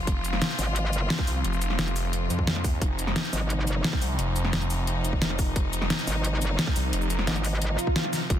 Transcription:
Already playing: C3 F3 F4
0.07 F1, kick, closed hi-hat
0.25 closed hi-hat, shaker
0.33 snare
0.42 snare, closed hi-hat, shaker
0.50 shaker
0.59 G#1, open hi-hat, shaker
0.76 closed hi-hat
0.93 closed hi-hat, shaker
1.10 snare, closed hi-hat
1.19 kick
1.27 C2, open hi-hat, shaker
1.44 F1, closed hi-hat
1.53 shaker
1.62 closed hi-hat, shaker
1.70 snare
1.79 F1, snare, closed hi-hat, shaker
1.87 snare, shaker
1.96 open hi-hat, shaker
2.13 closed hi-hat
2.30 F2, closed hi-hat, shaker
2.39 kick
2.47 snare, closed hi-hat
2.56 snare
2.64 kick, open hi-hat, shaker
2.81 F1 D#4, kick, closed hi-hat
2.99 closed hi-hat, shaker
3.07 snare
3.16 snare, closed hi-hat, shaker
3.24 shaker
3.33 G#1, open hi-hat, shaker
3.50 closed hi-hat
3.67 closed hi-hat, shaker
3.84 snare, closed hi-hat
3.93 kick
4.01 C2, open hi-hat, shaker
4.19 F1, closed hi-hat
4.36 closed hi-hat, shaker
4.45 snare
4.53 F1, snare, closed hi-hat, shaker
4.62 snare, shaker
4.70 open hi-hat, shaker
4.87 closed hi-hat
5.04 closed hi-hat, shaker
5.13 kick
5.22 snare, closed hi-hat
5.30 snare
5.39 kick, open hi-hat, shaker
5.56 F1, kick, closed hi-hat
5.73 closed hi-hat, shaker
5.82 snare
5.90 snare, closed hi-hat, shaker
5.99 shaker
6.07 G#1, open hi-hat, shaker
6.24 closed hi-hat
6.42 closed hi-hat, shaker
6.59 snare, closed hi-hat
6.67 kick
6.76 C2, open hi-hat, shaker
6.93 F1, closed hi-hat
7.02 shaker
7.10 closed hi-hat, shaker
7.19 snare
7.27 G#1, snare, closed hi-hat, shaker
7.36 snare, shaker
7.44 open hi-hat, shaker
7.62 closed hi-hat, swell
7.79 closed hi-hat, shaker
7.87 kick
7.96 snare, closed hi-hat
8.04 snare
8.13 snare, open hi-hat, shaker
8.30 F1 F4, kick, closed hi-hat

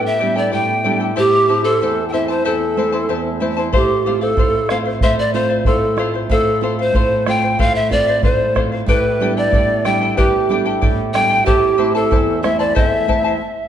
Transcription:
Already playing: A2 G4 A4 B4 D5 G5
0.06 E5
0.19 G3 B3 D4 G4 A4 D5 G5
0.36 G4 A4 D5 G5
0.51 A2 G4 A4 D5 G5
0.84 G3 B3 D4 G4 A4 D5 G5
1.00 G4 A4 G5
1.16 A2 E4 G4 A4 C5 E5 A5
1.48 A3 C4 E4 C5 E5 A5
1.64 E4 A4 C5 A5
1.82 E2 E4 C5 E5 A5
2.09 E4 E5 G5
2.13 A3 C4 E4 C5 E5 A5
2.28 E4 C5 A5
2.45 E2 E4 A4 C5 E5 A5
2.77 A3 C4 E4 C5 E5 A5
2.92 E4 C5 A5
3.09 E2 E4 C5 E5 A5
3.40 A3 C4 E4 C5 E5 A5
3.57 E4 C5 A5
3.72 A2 G4 A4 C5 F5, bombo low
4.06 A3 C4 F4 A4 C5 F5
4.21 A4 C5 F5
4.37 A2 A4 C5 F5, bombo low
4.69 A3 C4 F4 A4 C5 F5, bombo rim
4.85 C5 F5
5.01 A2 A4 C5 E5 F5, bombo low
5.19 D5
5.34 A3 C4 F4 A4 C5 F5
5.50 C5 F5
5.65 A2 A4 C5 F5, bombo low
5.96 A3 C4 F4 A4 C5 F5, bombo rim
6.14 C5 F5
6.30 A2 A4 C5 F5, bombo low
6.61 A3 C4 F4 A4 C5 F5
6.79 C5 F5
6.93 A2 A4 C5 F5, bombo low
7.26 A3 C4 F4 A4 C5 F5 G5, bombo rim
7.42 C5 F5
7.59 A2 A4 C5 F5, bombo low
7.75 E5
7.90 A3 C4 F4 A4 C5 D5 F5, bombo low
8.07 C5 F5
8.22 A2 A4 C5 F5, bombo low
8.54 A3 C4 F4 A4 C5 F5, bombo rim, bombo low
8.72 C5 F5
8.86 A2 G4 A4 B4 D5 G5, bombo low
9.20 G3 B3 D4 G4 A4 D5 G5
9.37 G4 A4 D5 G5
9.51 A2 G4 A4 D5 G5, bombo low
9.85 G3 B3 D4 G4 A4 D5 G5, bombo rim
10.01 G4 A4 G5
10.17 A2 G4 A4 B4 D5 G5, bombo low
10.49 G3 B3 D4 G4 A4 D5 G5
10.66 G4 A4 G5
10.81 A2 G4 A4 D5 G5, bombo low
11.14 G3 B3 D4 G4 A4 D5 G5, bombo rim
11.30 G4 A4 G5
11.46 A2 E4 G4 A4 C5 E5 A5, bombo low
11.78 A3 C4 E4 C5 E5 A5
11.95 E4 A4 C5 A5
12.11 E2 E4 C5 E5 A5, bombo low
12.43 A3 C4 E4 C5 E5 A5, bombo rim
12.59 E4 C5 D5 A5
12.75 E2 E4 A4 C5 E5 A5, bombo low
13.07 A3 C4 E4 C5 E5 A5, bombo low
13.24 E4 C5 A5

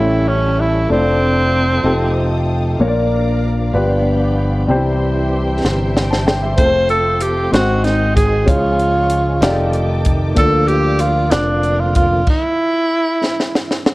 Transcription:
Already playing: A1 A2 G3 C#4 E4 G4 A4 C#5 E5 G5 A5 C#6
0.28 C#4
0.61 E4
0.89 F1 F3 A3 C4 D4 E4 A4 D5 F5 A5 D6
0.96 F4
1.83 F1 F3 A3 C4 D#4 F4 G4 A4 F5 G5 D#6
2.78 A#1 A#2 F3 A#3 C#4 D4 F4 A#4 C#5 D5 A#5 D6
2.85 D4 D5
3.72 G1 G2 F3 B3 D4 F4 F#4 G4 B4 G5 B5
3.81 G4
4.67 C2 C3 E3 G3 C4 D4 G4 C5 E5 G5 C6
4.76 E4
5.64 G1, snare
5.96 G5, snare
6.11 A5, snare
6.27 C5 G5, snare
6.42 E5
6.57 F1 F3 A3 C4 F4 G#4 A4 C5 F5 A5, kick, closed hi-hat
6.65 A4
6.89 A4, closed hi-hat
7.21 G4, closed hi-hat
7.51 G#1 G#2 D#3 G#3 C4 D#4 F#4 G#4 C5 D#5 F#5 G#5, snare, closed hi-hat
7.84 D#4, snare, closed hi-hat
8.16 G#4, kick, closed hi-hat
8.45 C#2 C#3 E3 G#3 C#4 E4 F4 G#4 C#5 F5 C#6, kick, closed hi-hat
8.53 F3 F4
8.79 closed hi-hat
9.10 closed hi-hat
9.41 F1 D#3 A3 D#4 F4 G4 G#4 D5 G5 A5 D6, snare, closed hi-hat
9.49 A4
9.73 closed hi-hat
10.05 kick, closed hi-hat
10.35 D2 D3 A#3 D4 F4 A4 D5 F5, kick, closed hi-hat
10.39 F3
10.68 G4, closed hi-hat
10.99 F4, closed hi-hat
11.31 F1 D4, snare, closed hi-hat
11.63 closed hi-hat
11.80 F4
11.95 F4, kick, closed hi-hat
12.27 E4, kick, crash
13.24 snare
13.40 snare
13.55 snare
13.71 snare
13.86 snare

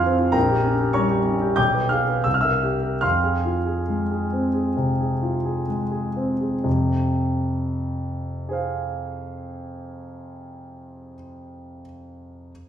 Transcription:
Already playing: F2 F3 F4 G#4 F5 G#5 C6 F6 G#6
0.06 C4
0.19 F4
0.32 A#1 A#4 G5 A#5
0.49 G4
0.65 C#4
0.80 G4
0.93 G3 C#5 A#5 C#6
1.10 G4
1.25 C#4
1.42 G4
1.56 B1 G5 D6 G6
1.75 B4
1.89 G#4 F5 F6
2.09 B4
2.24 C2 E6
2.34 F6
2.41 A#4 E5 E6
2.63 G4
2.83 A#4
3.01 F2 F5 C6 F6
3.24 G#4
3.45 F4
3.66 G#4
3.89 G#3
4.11 G#4
4.33 C4
4.54 G#4
4.77 C3
5.00 G#4
5.22 F4
5.45 G#4
5.68 G#3
5.92 G#4
6.16 C4
6.41 G#4
6.64 F2 C3
8.49 G#4 C5
8.53 F5

